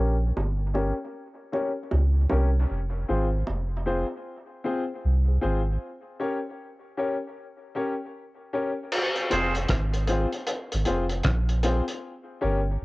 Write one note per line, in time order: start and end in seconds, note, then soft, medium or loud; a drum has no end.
0.00 0.32 A#1 medium
0.00 0.14 C#4 medium
0.00 0.14 G4 medium
0.00 0.14 A#4 medium
0.00 0.14 C#5 medium
0.37 0.92 G1 medium
0.37 high bongo medium
0.74 0.91 C#4 medium
0.74 0.92 G4 medium
0.74 0.92 A#4 medium
0.74 0.92 C#5 loud
0.74 high bongo medium
1.52 1.70 C#4 medium
1.52 1.70 G4 medium
1.52 1.70 A#4 medium
1.52 1.70 C#5 medium
1.52 high bongo soft
1.91 2.26 C#2 medium
1.91 high bongo medium
2.30 2.66 C2 medium
2.30 2.47 C#4 medium
2.30 2.48 G4 medium
2.30 2.48 A#4 medium
2.30 2.48 C#5 medium
2.30 high bongo medium
2.30 low bongo medium
2.70 3.04 F1 loud
3.08 3.43 G#1 medium
3.08 3.26 C4 medium
3.08 3.26 F4 medium
3.08 3.26 G#4 medium
3.08 3.26 C5 medium
3.47 4.04 F1 loud
3.47 high bongo medium
3.86 4.03 C4 medium
3.86 4.03 F4 medium
3.86 4.03 G#4 medium
3.86 4.04 C5 loud
4.64 4.81 C4 medium
4.64 4.82 F4 medium
4.64 4.82 G#4 medium
4.64 4.82 C5 medium
5.05 5.38 C2 medium
5.28 5.34 G#4 soft
5.28 5.33 C5 soft
5.41 5.77 G#1 medium
5.41 5.59 C4 medium
5.41 5.59 F4 medium
5.41 5.59 G#4 medium
5.41 5.59 C5 loud
6.20 6.37 C#4 medium
6.20 6.37 G4 medium
6.20 6.37 A#4 medium
6.20 6.37 C#5 loud
6.97 7.15 C#4 medium
6.97 7.15 G4 medium
6.97 7.15 A#4 medium
6.97 7.15 C#5 medium
7.75 7.92 C#4 medium
7.75 7.93 G4 medium
7.75 7.93 A#4 medium
7.75 7.93 C#5 medium
8.53 8.70 C#4 medium
8.53 8.70 G4 medium
8.53 8.70 A#4 medium
8.53 8.71 C#5 medium
8.92 crash loud
9.16 closed hi-hat soft
9.30 9.66 F1 loud
9.30 9.48 C4 medium
9.30 9.48 F4 medium
9.30 9.53 F4 medium
9.30 9.48 G#4 medium
9.30 9.54 G#4 medium
9.30 9.48 C5 loud
9.30 9.54 C5 medium
9.30 closed hi-hat medium
9.55 closed hi-hat medium
9.69 10.26 G#1 loud
9.69 kick loud
9.69 cross-stick loud
9.69 closed hi-hat loud
9.94 closed hi-hat medium
10.08 10.26 C4 medium
10.08 10.26 F4 medium
10.08 10.26 G#4 medium
10.08 10.26 C5 loud
10.08 closed hi-hat medium
10.33 closed hi-hat medium
10.47 closed hi-hat medium
10.72 10.86 G#1 medium
10.72 closed hi-hat medium
10.85 11.22 F1 loud
10.85 11.03 C4 medium
10.85 11.03 F4 medium
10.85 11.04 G#4 medium
10.85 11.04 C5 loud
10.85 closed hi-hat medium
11.10 closed hi-hat medium
11.23 11.81 A#1 loud
11.23 kick loud
11.23 cross-stick loud
11.23 closed hi-hat medium
11.49 closed hi-hat soft
11.63 11.81 C4 medium
11.63 11.81 F4 medium
11.63 11.81 G#4 medium
11.63 11.82 C5 loud
11.63 closed hi-hat medium
11.88 closed hi-hat medium
12.41 12.77 G1 loud
12.41 12.58 C#4 medium
12.41 12.59 G4 medium
12.41 12.59 A#4 medium
12.41 12.59 C#5 loud